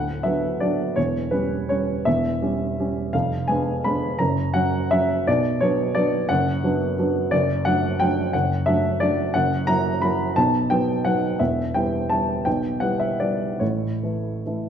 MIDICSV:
0, 0, Header, 1, 2, 480
1, 0, Start_track
1, 0, Key_signature, 2, "minor"
1, 0, Tempo, 362757
1, 1278, Time_signature, 3, 2, 24, 8
1, 3688, Tempo, 354610
1, 7048, Tempo, 338409
1, 9957, Key_signature, 2, "major"
1, 13288, Tempo, 349040
1, 17608, Tempo, 398406
1, 18568, Tempo, 425834
1, 19789, End_track
2, 0, Start_track
2, 0, Title_t, "Upright piano"
2, 0, Program_c, 0, 0
2, 0, Note_on_c, 0, 26, 36
2, 0, Note_on_c, 0, 38, 38
2, 0, Note_on_c, 0, 78, 66
2, 75, Control_c, 0, 64, 127
2, 309, Note_off_c, 0, 26, 0
2, 309, Note_on_c, 0, 76, 64
2, 313, Note_off_c, 0, 38, 0
2, 318, Note_off_c, 0, 78, 0
2, 326, Note_on_c, 0, 54, 28
2, 335, Note_on_c, 0, 59, 32
2, 338, Note_on_c, 0, 62, 33
2, 759, Note_off_c, 0, 54, 0
2, 764, Note_off_c, 0, 59, 0
2, 766, Note_off_c, 0, 62, 0
2, 798, Note_off_c, 0, 76, 0
2, 799, Note_on_c, 0, 74, 57
2, 815, Note_on_c, 0, 54, 29
2, 819, Note_on_c, 0, 59, 30
2, 827, Note_on_c, 0, 62, 36
2, 1235, Note_off_c, 0, 54, 0
2, 1238, Note_off_c, 0, 59, 0
2, 1242, Note_off_c, 0, 62, 0
2, 1267, Note_on_c, 0, 73, 60
2, 1274, Note_off_c, 0, 74, 0
2, 1283, Note_on_c, 0, 40, 39
2, 1284, Note_on_c, 0, 28, 36
2, 1301, Control_c, 0, 64, 0
2, 1515, Control_c, 0, 64, 127
2, 1727, Note_off_c, 0, 40, 0
2, 1728, Note_off_c, 0, 28, 0
2, 1733, Note_off_c, 0, 73, 0
2, 1733, Note_on_c, 0, 71, 58
2, 1748, Note_on_c, 0, 55, 34
2, 1749, Note_on_c, 0, 61, 33
2, 2197, Note_off_c, 0, 55, 0
2, 2198, Note_off_c, 0, 61, 0
2, 2235, Note_on_c, 0, 73, 60
2, 2240, Note_off_c, 0, 71, 0
2, 2252, Note_on_c, 0, 61, 37
2, 2253, Note_on_c, 0, 55, 28
2, 2683, Note_off_c, 0, 55, 0
2, 2683, Note_off_c, 0, 61, 0
2, 2717, Note_on_c, 0, 76, 68
2, 2722, Note_off_c, 0, 73, 0
2, 2735, Note_on_c, 0, 40, 45
2, 2736, Note_on_c, 0, 28, 37
2, 2747, Control_c, 0, 64, 0
2, 2933, Control_c, 0, 64, 127
2, 3187, Note_off_c, 0, 28, 0
2, 3187, Note_off_c, 0, 40, 0
2, 3205, Note_on_c, 0, 55, 33
2, 3209, Note_on_c, 0, 61, 38
2, 3644, Note_off_c, 0, 55, 0
2, 3646, Note_off_c, 0, 61, 0
2, 3702, Note_on_c, 0, 55, 36
2, 3706, Note_on_c, 0, 61, 36
2, 4119, Note_off_c, 0, 55, 0
2, 4121, Note_off_c, 0, 61, 0
2, 4153, Note_on_c, 0, 77, 61
2, 4154, Note_off_c, 0, 76, 0
2, 4169, Note_on_c, 0, 41, 41
2, 4172, Note_on_c, 0, 29, 39
2, 4180, Control_c, 0, 64, 0
2, 4379, Control_c, 0, 64, 127
2, 4621, Note_on_c, 0, 80, 67
2, 4626, Note_off_c, 0, 41, 0
2, 4627, Note_off_c, 0, 29, 0
2, 4632, Note_off_c, 0, 77, 0
2, 4636, Note_on_c, 0, 56, 33
2, 4638, Note_on_c, 0, 59, 36
2, 4650, Note_on_c, 0, 62, 35
2, 5069, Note_off_c, 0, 56, 0
2, 5070, Note_off_c, 0, 59, 0
2, 5077, Note_off_c, 0, 62, 0
2, 5109, Note_off_c, 0, 80, 0
2, 5119, Note_on_c, 0, 83, 72
2, 5135, Note_on_c, 0, 56, 35
2, 5136, Note_on_c, 0, 59, 33
2, 5144, Note_on_c, 0, 62, 38
2, 5557, Note_off_c, 0, 56, 0
2, 5557, Note_off_c, 0, 59, 0
2, 5561, Note_off_c, 0, 62, 0
2, 5582, Note_on_c, 0, 82, 72
2, 5595, Note_off_c, 0, 83, 0
2, 5596, Note_on_c, 0, 42, 47
2, 5599, Note_on_c, 0, 30, 40
2, 5619, Control_c, 0, 64, 0
2, 5806, Control_c, 0, 64, 127
2, 6056, Note_on_c, 0, 78, 76
2, 6059, Note_off_c, 0, 42, 0
2, 6060, Note_off_c, 0, 30, 0
2, 6066, Note_off_c, 0, 82, 0
2, 6069, Note_on_c, 0, 54, 40
2, 6076, Note_on_c, 0, 61, 42
2, 6517, Note_off_c, 0, 54, 0
2, 6522, Note_off_c, 0, 61, 0
2, 6559, Note_on_c, 0, 76, 77
2, 6561, Note_off_c, 0, 78, 0
2, 6573, Note_on_c, 0, 54, 38
2, 6580, Note_on_c, 0, 61, 39
2, 7003, Note_off_c, 0, 54, 0
2, 7006, Note_off_c, 0, 61, 0
2, 7043, Note_off_c, 0, 76, 0
2, 7054, Note_on_c, 0, 74, 71
2, 7064, Note_on_c, 0, 35, 41
2, 7070, Note_on_c, 0, 47, 49
2, 7072, Control_c, 0, 64, 0
2, 7256, Control_c, 0, 64, 127
2, 7523, Note_on_c, 0, 73, 72
2, 7531, Note_off_c, 0, 35, 0
2, 7534, Note_off_c, 0, 47, 0
2, 7541, Note_off_c, 0, 74, 0
2, 7545, Note_on_c, 0, 54, 35
2, 7547, Note_on_c, 0, 59, 38
2, 7549, Note_on_c, 0, 62, 42
2, 7977, Note_off_c, 0, 54, 0
2, 7978, Note_off_c, 0, 59, 0
2, 7979, Note_off_c, 0, 62, 0
2, 8008, Note_on_c, 0, 74, 74
2, 8013, Note_off_c, 0, 73, 0
2, 8024, Note_on_c, 0, 54, 38
2, 8033, Note_on_c, 0, 59, 40
2, 8038, Note_on_c, 0, 62, 37
2, 8459, Note_off_c, 0, 54, 0
2, 8463, Note_off_c, 0, 59, 0
2, 8466, Note_off_c, 0, 62, 0
2, 8492, Note_on_c, 0, 78, 81
2, 8499, Note_off_c, 0, 74, 0
2, 8510, Note_on_c, 0, 30, 41
2, 8512, Note_on_c, 0, 42, 49
2, 8526, Control_c, 0, 64, 0
2, 8729, Control_c, 0, 64, 127
2, 8967, Note_off_c, 0, 30, 0
2, 8968, Note_off_c, 0, 42, 0
2, 8990, Note_on_c, 0, 54, 39
2, 8995, Note_on_c, 0, 59, 38
2, 9001, Note_on_c, 0, 62, 41
2, 9427, Note_off_c, 0, 54, 0
2, 9430, Note_off_c, 0, 59, 0
2, 9434, Note_off_c, 0, 62, 0
2, 9483, Note_on_c, 0, 54, 37
2, 9486, Note_on_c, 0, 59, 38
2, 9491, Note_on_c, 0, 62, 41
2, 9914, Note_off_c, 0, 54, 0
2, 9916, Note_off_c, 0, 59, 0
2, 9919, Note_off_c, 0, 62, 0
2, 9945, Note_on_c, 0, 74, 71
2, 9949, Note_off_c, 0, 78, 0
2, 9961, Note_on_c, 0, 30, 44
2, 9961, Note_on_c, 0, 42, 51
2, 9980, Control_c, 0, 64, 0
2, 10174, Control_c, 0, 64, 127
2, 10421, Note_off_c, 0, 30, 0
2, 10421, Note_off_c, 0, 42, 0
2, 10425, Note_on_c, 0, 78, 80
2, 10427, Note_off_c, 0, 74, 0
2, 10440, Note_on_c, 0, 54, 39
2, 10447, Note_on_c, 0, 57, 36
2, 10453, Note_on_c, 0, 62, 41
2, 10876, Note_off_c, 0, 54, 0
2, 10880, Note_off_c, 0, 57, 0
2, 10883, Note_off_c, 0, 62, 0
2, 10915, Note_on_c, 0, 79, 76
2, 10917, Note_off_c, 0, 78, 0
2, 10937, Note_on_c, 0, 54, 40
2, 10939, Note_on_c, 0, 57, 35
2, 10946, Note_on_c, 0, 62, 41
2, 11353, Note_off_c, 0, 54, 0
2, 11354, Note_off_c, 0, 57, 0
2, 11358, Note_off_c, 0, 62, 0
2, 11389, Note_off_c, 0, 79, 0
2, 11394, Note_on_c, 0, 78, 70
2, 11410, Note_on_c, 0, 42, 46
2, 11415, Control_c, 0, 64, 0
2, 11415, Note_on_c, 0, 30, 41
2, 11631, Control_c, 0, 64, 127
2, 11849, Note_off_c, 0, 42, 0
2, 11851, Note_off_c, 0, 30, 0
2, 11854, Note_off_c, 0, 78, 0
2, 11856, Note_on_c, 0, 76, 76
2, 11880, Note_on_c, 0, 54, 39
2, 11881, Note_on_c, 0, 57, 36
2, 11887, Note_on_c, 0, 62, 45
2, 12302, Note_off_c, 0, 54, 0
2, 12302, Note_off_c, 0, 57, 0
2, 12306, Note_off_c, 0, 62, 0
2, 12337, Note_off_c, 0, 76, 0
2, 12341, Note_on_c, 0, 74, 73
2, 12360, Note_on_c, 0, 54, 38
2, 12364, Note_on_c, 0, 57, 33
2, 12365, Note_on_c, 0, 62, 39
2, 12778, Note_off_c, 0, 54, 0
2, 12781, Note_off_c, 0, 57, 0
2, 12781, Note_off_c, 0, 62, 0
2, 12815, Note_off_c, 0, 74, 0
2, 12818, Note_on_c, 0, 78, 75
2, 12832, Note_on_c, 0, 30, 42
2, 12834, Note_on_c, 0, 42, 49
2, 12839, Control_c, 0, 64, 0
2, 13061, Control_c, 0, 64, 127
2, 13283, Note_off_c, 0, 30, 0
2, 13284, Note_off_c, 0, 42, 0
2, 13290, Note_off_c, 0, 78, 0
2, 13290, Note_on_c, 0, 82, 85
2, 13306, Note_on_c, 0, 54, 35
2, 13306, Note_on_c, 0, 58, 33
2, 13316, Note_on_c, 0, 64, 41
2, 13727, Note_off_c, 0, 54, 0
2, 13727, Note_off_c, 0, 58, 0
2, 13733, Note_off_c, 0, 64, 0
2, 13765, Note_on_c, 0, 83, 70
2, 13766, Note_off_c, 0, 82, 0
2, 13780, Note_on_c, 0, 54, 35
2, 13789, Note_on_c, 0, 58, 36
2, 13794, Note_on_c, 0, 64, 36
2, 14198, Note_off_c, 0, 54, 0
2, 14202, Note_off_c, 0, 58, 0
2, 14205, Note_off_c, 0, 64, 0
2, 14236, Note_off_c, 0, 83, 0
2, 14239, Note_on_c, 0, 81, 76
2, 14253, Note_on_c, 0, 47, 38
2, 14258, Note_on_c, 0, 35, 43
2, 14263, Control_c, 0, 64, 0
2, 14453, Control_c, 0, 64, 127
2, 14699, Note_off_c, 0, 47, 0
2, 14701, Note_off_c, 0, 35, 0
2, 14705, Note_off_c, 0, 81, 0
2, 14706, Note_on_c, 0, 79, 71
2, 14719, Note_on_c, 0, 54, 35
2, 14719, Note_on_c, 0, 59, 35
2, 14725, Note_on_c, 0, 63, 38
2, 15145, Note_off_c, 0, 54, 0
2, 15145, Note_off_c, 0, 59, 0
2, 15149, Note_off_c, 0, 63, 0
2, 15182, Note_on_c, 0, 78, 68
2, 15186, Note_off_c, 0, 79, 0
2, 15196, Note_on_c, 0, 54, 32
2, 15206, Note_on_c, 0, 59, 33
2, 15210, Note_on_c, 0, 63, 38
2, 15623, Note_off_c, 0, 54, 0
2, 15629, Note_off_c, 0, 59, 0
2, 15631, Note_off_c, 0, 63, 0
2, 15661, Note_on_c, 0, 76, 59
2, 15664, Note_off_c, 0, 78, 0
2, 15672, Note_on_c, 0, 40, 41
2, 15676, Note_on_c, 0, 28, 34
2, 15688, Control_c, 0, 64, 0
2, 15936, Control_c, 0, 64, 127
2, 16130, Note_off_c, 0, 40, 0
2, 16132, Note_off_c, 0, 28, 0
2, 16138, Note_off_c, 0, 76, 0
2, 16142, Note_on_c, 0, 79, 66
2, 16154, Note_on_c, 0, 55, 30
2, 16164, Note_on_c, 0, 59, 33
2, 16166, Note_on_c, 0, 64, 35
2, 16600, Note_off_c, 0, 55, 0
2, 16605, Note_off_c, 0, 59, 0
2, 16607, Note_off_c, 0, 64, 0
2, 16625, Note_on_c, 0, 81, 61
2, 16643, Note_on_c, 0, 55, 30
2, 16644, Note_off_c, 0, 79, 0
2, 16653, Note_on_c, 0, 59, 30
2, 16658, Note_on_c, 0, 64, 33
2, 17081, Note_off_c, 0, 55, 0
2, 17086, Note_off_c, 0, 59, 0
2, 17089, Note_off_c, 0, 64, 0
2, 17113, Note_on_c, 0, 79, 63
2, 17120, Note_off_c, 0, 81, 0
2, 17130, Note_on_c, 0, 47, 39
2, 17132, Note_on_c, 0, 35, 36
2, 17152, Control_c, 0, 64, 0
2, 17328, Control_c, 0, 64, 127
2, 17594, Note_off_c, 0, 47, 0
2, 17595, Note_off_c, 0, 35, 0
2, 17597, Note_on_c, 0, 78, 64
2, 17600, Note_off_c, 0, 79, 0
2, 17614, Note_on_c, 0, 55, 31
2, 17619, Note_on_c, 0, 59, 29
2, 17623, Note_on_c, 0, 64, 32
2, 17831, Note_on_c, 0, 76, 53
2, 17832, Note_off_c, 0, 78, 0
2, 18034, Note_off_c, 0, 55, 0
2, 18037, Note_off_c, 0, 59, 0
2, 18039, Note_off_c, 0, 64, 0
2, 18075, Note_off_c, 0, 76, 0
2, 18076, Note_on_c, 0, 74, 51
2, 18092, Note_on_c, 0, 55, 28
2, 18097, Note_on_c, 0, 59, 27
2, 18100, Note_on_c, 0, 64, 32
2, 18526, Note_off_c, 0, 55, 0
2, 18529, Note_off_c, 0, 59, 0
2, 18531, Note_off_c, 0, 64, 0
2, 18553, Note_on_c, 0, 73, 46
2, 18566, Note_off_c, 0, 74, 0
2, 18568, Note_on_c, 0, 45, 35
2, 18573, Note_on_c, 0, 33, 29
2, 18591, Control_c, 0, 64, 0
2, 18843, Control_c, 0, 64, 127
2, 19027, Note_off_c, 0, 45, 0
2, 19030, Note_off_c, 0, 33, 0
2, 19047, Note_on_c, 0, 52, 26
2, 19053, Note_on_c, 0, 57, 25
2, 19056, Note_on_c, 0, 64, 28
2, 19483, Note_off_c, 0, 52, 0
2, 19485, Note_off_c, 0, 57, 0
2, 19487, Note_off_c, 0, 64, 0
2, 19529, Note_on_c, 0, 52, 27
2, 19531, Note_on_c, 0, 57, 28
2, 19540, Note_on_c, 0, 64, 31
2, 19789, Note_off_c, 0, 52, 0
2, 19789, Note_off_c, 0, 57, 0
2, 19789, Note_off_c, 0, 64, 0
2, 19789, Note_off_c, 0, 73, 0
2, 19789, End_track
0, 0, End_of_file